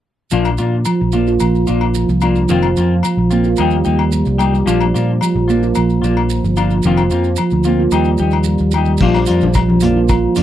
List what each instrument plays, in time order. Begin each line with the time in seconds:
0.31 fingered electric bass A#1, clean electric guitar F3 A#3 D4 F4, handpan F3, maracas
0.45 low agogo, maracas
0.58 fingered electric bass A#2, clean electric guitar A#3 D4 F4, maracas
0.85 handpan F3, low agogo, maracas
1.01 fingered electric bass A#1, handpan F3
1.12 handpan A#3, clean electric guitar A#3 D4 F4, maracas
1.27 handpan F4, maracas
1.40 fingered electric bass A#1, handpan F3, low agogo, maracas
1.55 maracas
1.67 fingered electric bass A#1, handpan F3, clean electric guitar A#3 D4 F4, maracas
1.81 handpan F3, low agogo
1.95 handpan F3, maracas
2.09 fingered electric bass C2, handpan F3, maracas
2.21 handpan F3, clean electric guitar A#3 D4 F4, low agogo, maracas
2.35 handpan F3, maracas
2.49 fingered electric bass F1, clean electric guitar D#3 A#3 C4 F4, handpan F3, maracas
2.62 low agogo, maracas
2.77 fingered electric bass F2, clean electric guitar A#3 C4 F4, maracas
3.03 handpan F3, low agogo, maracas
3.17 fingered electric bass A#1, handpan F3
3.30 handpan A#3, clean electric guitar A#3 C4 F4, maracas
3.44 handpan F4, maracas
3.57 fingered electric bass D#2, clean electric guitar D#3 A#3 D#4 G4, handpan G3, low agogo, maracas
3.70 maracas
3.85 fingered electric bass D#2, handpan G3, clean electric guitar A#3 D#4 G4, maracas
3.99 handpan G3, low agogo
4.12 handpan G3, maracas
4.25 fingered electric bass C2, handpan G3, maracas
4.38 handpan G3, clean electric guitar A#3 D#4 G4, low agogo, maracas
4.54 handpan G3, maracas
4.66 fingered electric bass A#1, clean electric guitar F3 A#3 D4 F4, handpan F3, maracas
4.81 low agogo, maracas
4.94 fingered electric bass A#2, clean electric guitar A#3 D4 F4, maracas
5.21 handpan F3, low agogo, maracas
5.35 fingered electric bass A#1, handpan F3
5.48 handpan A#3, clean electric guitar A#3 D4 F4, maracas
5.63 handpan F4, maracas
5.75 fingered electric bass A#1, handpan F3, low agogo, maracas
5.90 maracas
6.02 fingered electric bass A#1, handpan F3, clean electric guitar A#3 D4 F4, maracas
6.17 handpan F3, low agogo
6.30 maracas
6.44 fingered electric bass G1, handpan F3, maracas
6.57 handpan F3, clean electric guitar A#3 D4 F4, low agogo, maracas
6.70 handpan F3, maracas
6.83 fingered electric bass F1, clean electric guitar D#3 A#3 C4, handpan F3, maracas
6.87 clean electric guitar F4
6.97 low agogo, maracas
7.11 fingered electric bass F2, clean electric guitar A#3 C4 F4, maracas
7.24 maracas
7.36 handpan F3, low agogo, maracas
7.51 fingered electric bass D2, handpan F3, maracas
7.64 handpan A#3, clean electric guitar A#3 C4 F4, maracas
7.80 handpan F4
7.91 fingered electric bass D#2, handpan G3, clean electric guitar A#3 D#4 G4, low agogo, maracas
8.04 maracas
8.18 fingered electric bass D#2, handpan G3, clean electric guitar G4, maracas
8.22 clean electric guitar D#4
8.31 handpan G3, low agogo, maracas
8.44 handpan G3, maracas
8.58 fingered electric bass D#2, handpan G3, maracas
8.71 handpan G3, clean electric guitar G4, low agogo, maracas
8.77 clean electric guitar D#4
8.85 handpan G3, maracas
8.98 fingered electric bass A#1, clean electric guitar F3, handpan F3, kick, crash, maracas
9.02 clean electric guitar A#3 D4 F4
9.14 cross-stick, low agogo
9.26 fingered electric bass F2, clean electric guitar D4 F4, closed hi-hat, maracas
9.31 clean electric guitar A#3
9.41 fingered electric bass A#1, high conga, maracas
9.54 handpan F3, kick, cross-stick, low agogo, maracas
9.69 handpan F3, high conga
9.80 handpan A#3, clean electric guitar F4, closed hi-hat, low conga, maracas
9.85 clean electric guitar D4, muted clean electric guitar stroke
9.97 handpan F4
10.08 handpan F3, kick, cross-stick, low agogo, maracas
10.35 fingered electric bass F2, handpan F3, clean electric guitar A#3 D4 F4, closed hi-hat, high conga, maracas